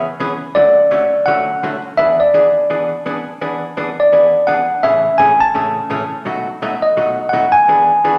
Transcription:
0.20 C#3 E3 B3 C#4 G#4
0.55 D3 F#3 A3 C#4 F#4 D5
0.91 D3 F#3 A3 C#4 F#4
1.26 D3 F#3 A3 C#4 F#4 F#5
1.63 D3 F#3 A3 C#4 F#4
1.98 E3 B3 D4 G#4 E5
2.20 D5
2.34 E3 B3 D4 G#4
2.70 E3 B3 D4 G#4
3.06 E3 B3 D4 G#4
3.41 E3 B3 D4 G#4
3.77 E3 B3 D4 G#4
4.00 D5
4.12 E3 B3 D4 G#4
4.47 E3 B3 D4 G#4 F#5
4.83 A2 C#3 E3 A3 C#4 G#4 E5
5.18 A2 C#3 E3 A3 C#4 G#4 G#5
5.41 A5
5.55 A2 C#3 E3 A3 C#4 G#4
5.90 A2 C#3 E3 A3 C#4 G#4
6.25 B2 F#3 A3 D#4 F#4
6.62 B2 F#3 A3 D#4 F#4
6.82 D#5
6.97 B2 F#3 A3 D#4 F#4
7.29 B2 F#3 A3 F#5
7.33 D#4 F#4
7.52 G#5
7.68 E3 B3 D4 G#4
8.05 E3 B3 D4 G#4

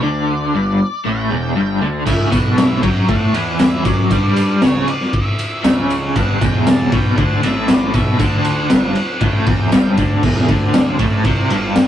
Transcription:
0.02 D2 D3 D5
0.54 G1 G2
1.05 A1 A2 G5
1.30 E1 E2
1.55 G1 G2
1.81 D2 D3
2.06 C#2 C#3 E5, kick, crash, tambourine
2.31 B1 B2 F#5, kick, ride, tambourine
2.56 E5, snare, ride, tambourine
2.82 F#2 F#3 G5, kick, ride
3.09 A2 A3 F#5, kick, ride
3.33 E2 E3, ride
3.59 E5, snare, ride, tambourine
3.84 F#2 F#3 D5, kick, ride, tambourine
4.11 G2 G3, kick, ride, tambourine
4.36 ride, tambourine
4.62 C#2 C#3 C#5, snare, ride, tambourine
4.88 D5, ride
5.01 snare
5.13 E5, kick, ride
5.39 ride, tambourine
5.64 C#2 C#3, snare, ride, tambourine
5.90 ride, tambourine
6.16 G1 G2 F#5, kick, ride, tambourine
6.41 E1 E2 G5, kick, ride, tambourine
6.67 A5, snare, ride, tambourine
6.92 B1 B2 G5, kick, ride
7.17 D2 D3 F#5, kick, ride
7.43 A1 A2 E5, snare, ride, tambourine
7.68 D5, snare, ride, tambourine
7.94 B1 B2 E5, kick, ride, tambourine
8.19 D2 D3 F#5, kick, ride, tambourine
8.44 ride, tambourine
8.70 G1 G2, snare, ride, tambourine
8.95 ride
9.21 A1 A2 G5, kick, ride, tambourine
9.47 E1 E2, kick, ride
9.72 G1 G2, snare, ride, tambourine
9.97 D2 D3, kick, ride, tambourine
10.23 E1 E2, kick, crash
10.36 snare
10.48 D2 D3, kick, ride
10.74 snare, ride, tambourine
10.99 A1 A2, kick, ride
11.24 C2 C3, kick, ride
11.50 G1 G2, ride
11.76 snare, ride, tambourine

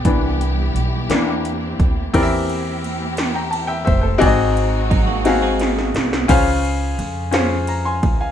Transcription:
Already playing: B3 G4 D5
0.04 C2 E3 G3 B3 D4 E4, kick, closed hi-hat
0.41 closed hi-hat
0.75 B1, closed hi-hat
1.09 E2 E3 A#3 C4 D4, snare, closed hi-hat
1.45 closed hi-hat
1.79 D2, kick, closed hi-hat
2.11 E2 E3 A#3 C4 E4 G4 A#4, kick, crash, ride
2.16 D5
2.23 E5
2.49 ride
2.84 ride
3.17 snare, ride
3.34 G5 A#5
3.51 A5, ride
3.67 E5 G5
3.85 F1 C5 E5, kick, ride
4.01 A4 C5
4.18 G#1 G#2 G#3 C4 D#4 F#4 G#4 D5, kick, ride
4.27 D#5
4.57 ride
4.90 F#3 D#4, kick, ride
5.07 A#3 F#4
5.25 C4 D#4 F#4 G#4 F5, snare, ride
5.42 C4 G#4
5.59 snare, ride
5.79 snare
5.95 C2, snare, ride
6.13 snare
6.28 C#2 C#3 C#4 F4 G#4 C5 F5, kick, crash, ride
6.65 ride
6.99 F2, ride
7.31 C#4 F4 G#4 C5 F5, snare, ride
7.67 A#5, ride
7.85 G#5 C6
8.03 C#2, kick, ride
8.21 F5 G#5

